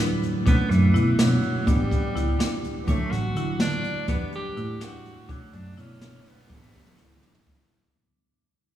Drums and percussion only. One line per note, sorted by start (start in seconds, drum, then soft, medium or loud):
0.23 closed hi-hat medium
0.47 kick loud
0.47 closed hi-hat medium
0.71 snare soft
0.71 closed hi-hat medium
0.95 closed hi-hat medium
1.19 snare loud
1.19 closed hi-hat medium
1.43 closed hi-hat soft
1.67 kick medium
1.67 closed hi-hat medium
1.91 kick medium
1.91 closed hi-hat medium
2.16 snare soft
2.16 closed hi-hat medium
2.40 snare loud
2.40 closed hi-hat medium
2.64 closed hi-hat medium
2.88 kick loud
2.88 closed hi-hat medium
3.12 snare soft
3.12 closed hi-hat medium
3.36 closed hi-hat medium
3.60 snare medium
3.60 closed hi-hat medium
3.84 closed hi-hat soft
4.08 kick medium
4.08 closed hi-hat medium
4.32 closed hi-hat medium
4.57 closed hi-hat medium
4.81 snare medium
4.81 closed hi-hat medium
5.06 closed hi-hat soft
5.29 kick medium
5.29 closed hi-hat medium
5.53 closed hi-hat medium
5.78 closed hi-hat medium
6.01 snare loud
6.01 closed hi-hat medium
6.26 closed hi-hat medium
6.50 kick loud
6.74 kick medium
6.87 mid tom medium
6.98 snare medium
7.23 mid tom medium
7.35 floor tom medium
7.47 kick medium